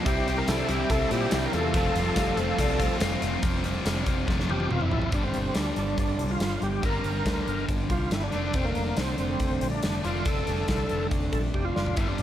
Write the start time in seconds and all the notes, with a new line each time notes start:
0.05 C2 C3 G3 C4 E4 G4, kick, closed hi-hat
0.26 C2 G3 C4 E4, closed hi-hat
0.37 G4 A#4
0.47 C2 C3 G3 C4 E4 A4, snare, closed hi-hat, tambourine
0.67 C2 C3 G3 C4 E4 G4, closed hi-hat
0.89 C2 C3 G3 C4 E4 A4, kick, closed hi-hat
1.10 A#2 C3 G3 C4 E4 G4, closed hi-hat
1.31 C2 C3 G3 C4 E4, snare, closed hi-hat, tambourine
1.46 G4 A#4
1.52 E2 G3 C4 E4 F4 A4, closed hi-hat
1.73 F1 F3 A3 C4 F4, kick, closed hi-hat
1.94 F1 A3 C4 F4, closed hi-hat
2.15 F1 F3 A3 C4 F4 G4, kick, snare, closed hi-hat, tambourine
2.36 F1 F3 A3 C4 F4, closed hi-hat
2.41 C5
2.58 C2 F3 A3 C4 F4 D5, kick, closed hi-hat
2.79 F3 A3 C4 F4 C5, kick, closed hi-hat
3.00 F1 F3 A3 C4 F4, snare, closed hi-hat, tambourine
3.21 F1 A3 C4 F4, closed hi-hat
3.41 F1 F2 C3 F3, kick, closed hi-hat
3.64 F2 C3 F3, closed hi-hat
3.85 F1 F2 C3 F3, snare, closed hi-hat, tambourine
4.06 F1 F2 C3 F3, kick, closed hi-hat
4.27 F1 F2 C3 F3, kick, snare
4.40 snare
4.49 F1 F2 C3 F3 G4, high tom
4.60 high tom
4.70 F1 F2 C3 F3 F4, mid tom
4.81 E4, mid tom
4.91 A1 F2 C3 F3, floor tom
5.02 floor tom
5.12 G1 G2 D3 G3 D4, kick, closed hi-hat
5.24 C4
5.34 G1, closed hi-hat
5.55 D2 D4, snare, closed hi-hat, tambourine
5.76 G1, closed hi-hat
5.98 G1 D4, kick, closed hi-hat
6.19 C2, closed hi-hat
6.31 F4
6.40 G1, snare, closed hi-hat, tambourine
6.62 G1 G4, closed hi-hat
6.82 G1 G2 D3 G3 A#4, kick, closed hi-hat
7.04 G1, closed hi-hat
7.26 D2, kick, snare, closed hi-hat, tambourine
7.47 G1, closed hi-hat
7.69 G1, kick, closed hi-hat
7.90 C2 F4, kick, closed hi-hat
8.11 G1 E4, snare, closed hi-hat, tambourine
8.23 D4
8.32 F1 D3 A3 D4, closed hi-hat
8.53 F1 C4, kick, closed hi-hat
8.65 A#3
8.75 F1, closed hi-hat
8.97 C2 C4, snare, closed hi-hat, tambourine
9.18 F1 C4, closed hi-hat
9.40 F1, kick, closed hi-hat
9.61 A#1, closed hi-hat
9.71 D4
9.83 F1, snare, closed hi-hat, tambourine
10.03 F1 D3 A3 F4, closed hi-hat
10.07 D4
10.25 F1 A4, kick, closed hi-hat
10.47 F1, closed hi-hat
10.68 C2, kick, snare, closed hi-hat, tambourine
10.89 F1, closed hi-hat
11.11 F1, kick, closed hi-hat
11.32 A#1 A4, kick, closed hi-hat
11.54 F1 G4, kick
11.65 F4
11.76 F#1, snare
11.86 floor tom
11.96 G1 G2 D3 G3 E4, kick, closed hi-hat
12.09 D4
12.18 G1, closed hi-hat